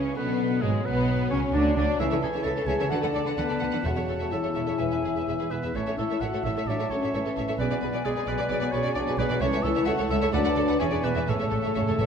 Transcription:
Already playing: C#2 C#3 E3 C#4 C#5
0.16 B1 B2 D3 B3 B4
0.61 G#1 G#2 F#3 G#3 G#4
0.85 B1 B2 B3 B4
1.30 C#2 C#3 C#4 C#5
1.53 D2 D3 D4 D5
1.75 D2 D3 D4 D5
1.99 C#2 C#3 E3 E4 A4 C#5 E5 A5
2.10 C#3 A4 C#5 E5
2.22 C#2 C#3 G#4 A4 C#5 G#5
2.33 C#3 A4 C#5 E5
2.43 C#2 C#3 A4 C#5 E5 A5
2.57 C#3 A4 C#5
2.66 C#2 C#3 G#4 A4 C#5 E5 G#5
2.79 C#3 A4 C#5 E5
2.89 D2 D3 F#4 A4 B4 D5 F#5
3.01 D3 A4 B4 F#5
3.12 D2 D3 D4 A4 D5
3.24 D3 A4 B4 F#5
3.37 D2 D3 B3 A4 B4 F#5
3.49 D3 A4 D5
3.59 D2 D3 A4 B4 F#5
3.71 D3 A4 B4 F#5
3.84 E1 E2 C#3 F#4 A4 C#5 E5 F#5
3.96 E2 A4 C#5 E5
4.07 E1 E2 A4 C#5
4.19 E2 A4 C#5 E5
4.31 E1 E2 E4 A4 C#5 E5
4.43 E2 A4 C#5
4.54 E1 E2 A4 C#5 E5
4.66 E2 A4 C#5 E5
4.78 E1 E2 G#4 B4 E5 G#5
4.90 E2 G#4 B4 E5
5.02 E1 E2 G#4 B4
5.14 E2 G#4 B4 E5
5.26 E1 E2 G#4 B4 E5
5.39 E2 G#4 B4
5.51 E1 E2 B3 G#4 B4 E5
5.63 E2 G#4 B4 E5
5.74 A1 A2 C#4 A4 C#5 E5 A5
5.86 A2 A4 C#5 E5
5.98 A1 A2 E4 A4 C#5 E5
6.10 A2 A4 C#5 E5
6.21 A1 A2 F#4 A4 C#5 E5 F#5
6.33 A2 A4 C#5
6.44 A1 A2 E4 A4 C#5 E5
6.56 A2 A4 C#5 E5
6.66 A1 A2 F#3 D4 A4 C#5 D5 E5
6.78 A2 A4 C#5 E5
6.90 A1 A2 C#4 A4 C#5
7.02 A2 A4 C#5 E5
7.14 A1 A2 E3 A4 C#5 E5
7.25 A2 A4 C#5
7.36 A1 A2 A4 C#5 E5
7.48 A2 A4 C#5 E5
7.59 B1 B2 B3 G#4 B4 D5 G#5
7.71 B2 G#4 D5
7.81 B1 B2 G#4 B4
7.93 B2 G#4 D5
8.05 B1 B2 G#3 G#4 D5
8.16 B2 G#4 B4
8.26 B1 B2 B3 G#4 B4 D5
8.38 B2 G#4 D5
8.49 B1 B2 F#3 G#4 D5
8.60 B2 G#4 D5
8.72 B1 B2 C#4 G#4 B4 C#5
8.83 B2 G#4 D5
8.95 B1 B2 D4 G#4 D5
9.07 B2 G#4 B4
9.18 B1 B2 B3 G#4 B4 D5
9.29 B2 G#4 D5
9.41 C#2 E3 C#4 A4 C#5 E5 A5
9.52 C#2 A4 C#5 E5
9.63 C#2 E4 A4 C#5 E5
9.75 C#2 A4 C#5 E5
9.86 C#2 A3 F#4 A4 C#5 E5 F#5
9.98 C#2 A4 C#5
10.10 C#2 E4 A4 C#5 E5
10.21 C#2 A4 C#5 E5
10.33 D2 F#3 D4 A4 B4 D5 F#5 A5
10.45 D2 A4 B4 F#5
10.56 D2 A4 D5
10.68 D2 A4 B4 F#5
10.79 E1 E2 E3 C#4 G#4 C#5 D5 E5 G#5
10.91 E2 G#4 B4 D5
11.02 E1 E2 B3 G#4 B4 D5 E5
11.15 E2 G#4 D5 E5
11.27 A1 A2 C#3 A3 A4 C#5 E5 A5
11.39 A2 A4 C#5 E5
11.44 A2
11.51 A1 A2 A4 C#5
11.62 A2 A4 C#5 E5
11.67 A2
11.75 A1 A2 C#3 A4 C#5 E5
11.82 A2
11.88 A2 A4 C#5
11.98 A1 A2 E3 A4 C#5 E5

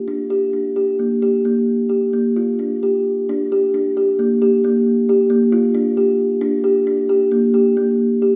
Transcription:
0.08 D4
0.30 G4
0.53 D4
0.76 G4
0.99 A#3
1.22 G4
1.45 A#3
1.89 G4
2.13 A#3
2.36 F4
2.59 D4
2.83 G4
3.29 D4
3.52 G4
3.74 D4
3.97 G4
4.19 A#3
4.42 G4
4.64 A#3
5.09 G4
5.30 A#3
5.52 F4
5.75 D4
5.97 G4
6.41 D4
6.64 G4
6.87 D4
7.09 G4
7.32 A#3
7.54 G4
7.77 A#3
8.22 G4

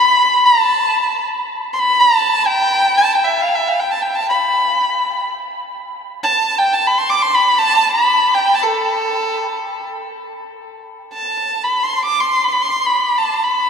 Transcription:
Already playing: B5
0.45 A5
1.74 C6
1.79 B5
2.00 A5
2.46 G5
2.98 A5
3.15 G5
3.25 E5
3.42 F5
3.55 E5
3.68 F5
3.80 G5
3.91 A5
4.02 G5
4.15 A5
4.30 B5
6.24 A5
6.58 G5
6.74 A5
6.87 B5
6.98 C6
7.10 D6
7.22 C6
7.35 B5
7.59 A5
7.88 B5
8.35 G5
8.55 A5
8.63 A4
11.14 A5
11.64 B5
11.83 C6
12.05 D6
12.20 C6
12.44 B5
12.48 C6
12.53 B5
12.62 C6
12.87 B5
13.18 A5
13.44 B5

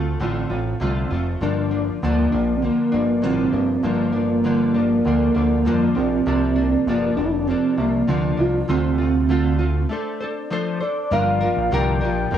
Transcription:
Already playing: D2 A3 C4 F4
0.20 A1 D3 A3 C4 F4
0.50 A1 A3 C4 F4
0.80 C2 D3 A3 C4 F4
1.11 F1 A3 C4 F4
1.41 G1 G2 D3 F3 A#3 D4
1.71 F3 A#3 D4
2.02 D2 G2 D3 F3 A#3 D4
2.32 A#1 F3 A#3 D4
2.56 C4
2.62 D3 F3 A#3 D4
2.92 G1 F3 A#3 D4
3.22 A1 G2 D3 F3 A#3 C4 D4
3.53 G1 F3 A#3 D4
3.83 G1 G2 D3 F3 A#3 D4
4.13 F3 A#3 D4
4.44 G2 D3 F3 A#3 D4
4.74 F3 A#3 D4
5.05 D2 D3 F3 A#3 D4
5.35 D2 F3 A#3 D4
5.65 F2 G2 D3 F3 A#3 D4
5.95 A#1 F3 A#3 C4 D4
6.26 C2 C3 F3 A#3 D4
6.56 F3 A#3 D4
6.86 G1 C3 F3 A#3 D4
7.16 F1 F3 A#3 D4
7.25 E4
7.31 D4
7.47 C3 F3 A#3 C4 D4
7.77 C2 F3 A#3 D4
8.07 D2 C3 F3 A#3 D4
8.37 C2 F3 A#3 D4 F4
8.68 D2 D3 A3 C4 F4
8.98 A3 C4 F4
9.29 D3 A3 C4 F4
9.59 A3 C4 F4
9.89 A3 D4 A4 C5
10.21 D4 A4 C5
10.50 F3 A3 D4 A4 C5
10.80 D4 A4 C5 D5
11.11 G1 G2 D3 F3 A#3 D4 A#4 F5
11.41 F3 A#3 D4 A#4
11.57 A#1
11.71 C2 G2 D3 F3 A#3 D4 A#4 G5
12.01 A#1 F3 A#3 D4 A#4
12.31 F1 F3 A#3 D4 A#4 G5

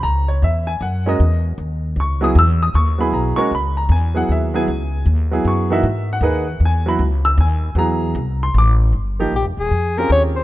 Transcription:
0.03 C#2 A#5
0.28 C#5
0.42 E2 E5
0.67 G#5
0.81 F#2 F#5
1.06 G#3 C#4 F#4 A#4 D#5
1.20 E2
1.58 D#2
1.96 C#2 C#6
2.21 F#3 B3 E4 G#4 D#6
2.35 E2 E6
2.63 D#6
2.74 D#2 C#6
2.98 F#3 B3 E4 G#4 B5
3.12 B1 A#5
3.36 G#3 C#4 F#4 A#4 C#6, muted upright bass stroke
3.51 C#2 B5
3.77 A#5
3.89 E2 G#5
4.14 F#3 B3 E4 G#4 F#5
4.29 D#2 E5
4.54 F#3 B3 E4 G#4 G#5
4.67 C#2
5.06 D#2
5.31 F#3 B3 E4 G#4
5.45 F#2 C#6
5.70 E3 A#3 D#4 F#4 E5
5.83 G#2
6.13 F#5
6.21 D#2 A#3 D#4 G#4 B4
6.60 E2
6.65 G#5
6.86 F#3 B3 E4 F#4 B5
6.99 C#2
7.25 E6
7.38 D#2 G#5
7.75 E2 F#3 B3 E4 G#4 A#5
8.15 C2
8.43 C6
8.54 A1
8.58 D6
8.93 G1
9.19 F3 A#3 D#4 G4
9.32 A#1
9.36 G4
9.45 F1
9.57 D#1 G#4
9.71 F2
9.97 C4 C#4 F4 G4 G#4 A#4
10.10 D#2 C#5
10.36 C5

